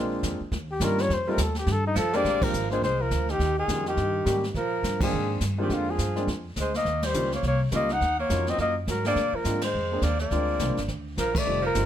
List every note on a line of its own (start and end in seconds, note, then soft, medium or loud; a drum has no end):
0.00 0.22 A#1 medium
0.00 0.37 G#3 medium
0.00 0.37 A#3 medium
0.00 0.38 C4 medium
0.00 0.38 D4 medium
0.00 0.38 F4 medium
0.23 0.39 F2 medium
0.23 kick soft
0.23 snare medium
0.23 hi-hat pedal medium
0.41 muted upright bass stroke soft
0.52 0.79 D#2 loud
0.52 brush sweep medium
0.52 kick soft
0.52 snare soft
0.71 0.86 G4 medium
0.80 1.08 G2 medium
0.80 1.10 G3 medium
0.80 1.10 A#3 medium
0.80 1.10 C#4 medium
0.80 1.10 D#4 medium
0.80 1.10 F4 medium
0.80 kick soft
0.80 snare medium
0.80 hi-hat pedal medium
0.84 1.03 A#4 medium
0.98 1.15 C#5 loud
0.98 snare soft
1.09 1.37 F2 medium
1.09 brush sweep soft
1.09 kick soft
1.09 snare soft
1.14 1.32 C5 medium
1.27 1.37 G3 medium
1.27 1.37 A3 medium
1.27 1.38 C4 medium
1.27 1.38 D#4 medium
1.27 1.38 F4 medium
1.27 1.44 A#4 medium
1.38 1.66 D#2 medium
1.38 kick soft
1.38 snare medium
1.38 hi-hat pedal medium
1.43 1.58 A4 medium
1.55 snare soft
1.59 1.74 G4 medium
1.67 1.95 G2 loud
1.67 brush sweep soft
1.67 kick soft
1.67 snare soft
1.72 1.87 A4 loud
1.87 1.93 D#4 medium
1.95 2.24 F2 loud
1.95 2.15 F3 medium
1.95 2.17 A4 loud
1.95 kick soft
1.95 snare medium
1.95 hi-hat pedal medium
2.13 2.51 G#3 medium
2.13 2.44 A#3 loud
2.13 2.51 A#3 medium
2.13 2.51 C4 medium
2.13 2.52 D4 medium
2.13 2.52 G4 medium
2.13 2.45 D5 loud
2.13 snare soft
2.24 2.52 A#1 medium
2.24 brush sweep soft
2.24 kick soft
2.24 snare soft
2.42 2.71 F3 medium
2.42 2.71 A#4 loud
2.42 kick medium
2.42 crash medium
2.54 2.81 G#1 medium
2.54 hi-hat pedal medium
2.71 2.81 G#3 medium
2.71 2.82 G#3 medium
2.71 2.81 A#3 medium
2.71 2.81 C4 medium
2.71 2.82 D4 medium
2.71 2.82 F4 medium
2.71 2.82 C5 medium
2.71 snare soft
2.82 3.10 C2 medium
2.82 3.03 G#3 medium
2.82 3.03 C5 medium
2.82 brush sweep soft
2.82 kick soft
2.82 snare soft
3.01 3.32 F3 medium
3.01 3.32 A#4 medium
3.11 3.39 D2 medium
3.11 kick soft
3.11 snare medium
3.11 hi-hat pedal medium
3.29 3.58 D#3 medium
3.29 3.58 G4 medium
3.29 snare soft
3.39 3.67 D#2 medium
3.39 brush sweep soft
3.39 kick soft
3.39 snare soft
3.58 3.85 D#3 medium
3.58 3.85 G#4 medium
3.68 3.96 F2 medium
3.68 3.84 G3 medium
3.68 3.84 A#3 soft
3.68 3.85 C#4 soft
3.68 3.85 D#4 soft
3.68 3.85 F4 medium
3.68 kick soft
3.68 snare medium
3.68 hi-hat pedal medium
3.86 4.40 D#3 medium
3.86 4.41 G4 medium
3.86 snare soft
3.97 4.25 G2 medium
3.97 brush sweep soft
3.97 kick soft
3.97 snare soft
4.25 4.54 G#2 medium
4.25 4.41 G3 medium
4.25 4.41 A#3 medium
4.25 4.42 C#4 medium
4.25 4.42 D#4 medium
4.25 4.42 G4 medium
4.25 kick soft
4.25 snare medium
4.25 hi-hat pedal medium
4.44 snare soft
4.55 4.82 A#2 medium
4.55 4.99 F3 medium
4.55 4.99 A#4 medium
4.55 brush sweep medium
4.55 kick soft
4.55 snare soft
4.83 5.11 G2 medium
4.83 kick soft
4.83 snare medium
4.83 hi-hat pedal medium
5.01 5.39 F3 medium
5.01 5.39 G#3 medium
5.01 5.39 A#3 medium
5.01 5.40 C4 medium
5.01 5.40 D4 medium
5.01 5.40 F4 medium
5.01 5.40 G#4 medium
5.01 kick medium
5.01 crash medium
5.12 5.40 G#2 medium
5.12 brush sweep soft
5.41 5.69 G2 medium
5.41 kick soft
5.41 snare medium
5.41 hi-hat pedal medium
5.58 5.73 D#3 medium
5.58 5.97 G#3 medium
5.58 5.97 A#3 medium
5.58 5.97 C4 medium
5.58 5.97 D4 medium
5.58 5.97 F4 medium
5.58 5.75 G4 medium
5.70 5.98 F2 medium
5.70 5.91 D3 medium
5.70 brush sweep soft
5.70 kick soft
5.70 snare soft
5.74 5.92 F4 medium
5.89 6.29 F3 medium
5.89 6.30 G#4 medium
5.98 6.27 G2 medium
5.98 kick soft
5.98 snare medium
5.98 hi-hat pedal medium
6.16 6.27 G#3 medium
6.16 6.27 A#3 medium
6.16 6.27 C4 medium
6.16 6.27 D4 medium
6.16 6.27 F4 medium
6.16 snare soft
6.27 6.56 F2 medium
6.27 brush sweep soft
6.27 kick soft
6.27 snare soft
6.56 6.84 D2 medium
6.56 kick soft
6.56 snare medium
6.56 hi-hat pedal medium
6.60 6.75 G#3 medium
6.60 6.75 C5 medium
6.74 7.08 A#3 medium
6.74 7.07 D#5 medium
6.74 snare soft
6.85 7.13 D#2 medium
6.85 brush sweep soft
6.85 kick soft
6.85 snare soft
7.02 7.34 G3 medium
7.02 7.33 C5 medium
7.02 snare medium
7.02 ride medium
7.14 7.42 C#2 medium
7.14 7.30 G3 medium
7.14 7.30 A#3 medium
7.14 7.30 C#4 medium
7.14 7.30 D#4 medium
7.14 7.30 F4 medium
7.14 hi-hat pedal medium
7.32 7.44 A#3 medium
7.32 7.44 C#5 medium
7.32 snare soft
7.43 7.71 C2 medium
7.43 brush sweep soft
7.43 kick soft
7.43 snare soft
7.47 7.61 A#3 medium
7.47 7.62 C#5 medium
7.71 8.00 C#2 medium
7.71 7.88 G3 medium
7.71 7.88 A#3 medium
7.71 7.94 A#3 medium
7.71 7.88 C#4 medium
7.71 7.88 D#4 medium
7.71 7.88 F4 medium
7.71 kick soft
7.71 snare medium
7.71 hi-hat pedal medium
7.76 7.94 D#5 loud
7.89 8.18 D#4 medium
7.89 snare soft
7.93 8.20 F#5 loud
8.01 8.29 D#2 medium
8.01 brush sweep medium
8.01 kick soft
8.01 snare soft
8.19 8.50 A#3 medium
8.19 8.52 C#5 medium
8.30 8.58 F2 medium
8.30 8.73 F#3 medium
8.30 8.73 A#3 medium
8.30 8.73 C#4 soft
8.30 8.73 D#4 medium
8.30 8.73 F4 medium
8.30 kick soft
8.30 snare medium
8.30 hi-hat pedal medium
8.47 8.60 C4 medium
8.47 8.60 D#5 medium
8.47 snare soft
8.58 8.87 F#2 medium
8.58 8.76 A#3 medium
8.58 8.76 D#5 medium
8.58 brush sweep soft
8.58 kick soft
8.58 snare soft
8.87 9.15 G#2 medium
8.87 9.05 F#3 medium
8.87 9.05 A#4 medium
8.87 kick soft
8.87 snare medium
8.87 hi-hat pedal medium
9.05 9.15 G#3 medium
9.05 9.15 A#3 medium
9.05 9.36 A#3 medium
9.05 9.16 C4 medium
9.05 9.16 D4 medium
9.05 9.16 G#4 medium
9.05 9.37 D5 loud
9.05 snare soft
9.16 9.32 A#2 medium
9.16 brush sweep soft
9.16 kick soft
9.16 snare soft
9.33 9.63 F3 medium
9.33 9.63 A#4 medium
9.33 muted upright bass stroke soft
9.44 9.73 G#2 medium
9.44 9.61 G#3 medium
9.44 9.61 A#3 medium
9.44 9.61 C4 medium
9.44 9.61 D4 medium
9.44 9.61 F4 medium
9.44 kick soft
9.44 snare medium
9.44 hi-hat pedal medium
9.61 10.05 G#3 medium
9.61 10.05 C5 medium
9.61 snare medium
9.61 ride medium
9.73 10.01 F2 medium
9.73 brush sweep soft
9.92 10.02 G#3 medium
9.92 10.02 A#3 medium
9.92 10.02 C4 medium
9.92 10.02 D4 soft
9.92 10.02 G#4 medium
10.02 10.30 D#2 medium
10.02 10.20 A#3 medium
10.02 10.20 D5 medium
10.02 kick soft
10.02 snare medium
10.02 hi-hat pedal medium
10.19 10.87 A#3 medium
10.19 10.88 D5 medium
10.19 snare soft
10.31 10.59 D2 medium
10.31 10.58 G#3 medium
10.31 10.59 A#3 medium
10.31 10.59 C4 medium
10.31 10.59 D4 medium
10.31 10.59 F4 medium
10.31 brush sweep soft
10.31 kick soft
10.31 snare soft
10.59 10.69 C2 medium
10.59 10.76 G#3 medium
10.59 10.76 A#3 medium
10.59 10.76 C4 medium
10.59 10.76 D4 soft
10.59 10.76 F4 medium
10.59 kick soft
10.59 snare medium
10.59 hi-hat pedal medium
10.69 10.78 A#1 medium
10.77 10.87 G#1 medium
10.77 snare soft
10.88 11.16 D2 medium
10.88 brush sweep medium
10.88 kick soft
10.88 snare soft
11.17 11.46 A#1 medium
11.17 11.36 F3 medium
11.17 11.40 A#4 medium
11.17 kick soft
11.17 snare medium
11.17 hi-hat pedal soft
11.34 11.61 A3 medium
11.34 11.65 D5 loud
11.34 kick medium
11.34 crash medium
11.46 11.74 F1 medium
11.46 11.62 G3 medium
11.46 11.62 A3 soft
11.46 11.62 C4 soft
11.46 11.62 D#4 soft
11.46 11.63 F4 medium
11.46 brush sweep soft
11.62 11.86 F3 medium
11.66 11.86 A#4 medium
11.75 11.86 G1 medium
11.75 11.86 G3 soft
11.75 11.86 A3 soft
11.75 11.86 C4 medium
11.75 11.86 D#4 medium
11.75 11.86 F4 medium
11.75 kick soft
11.75 snare medium
11.75 hi-hat pedal soft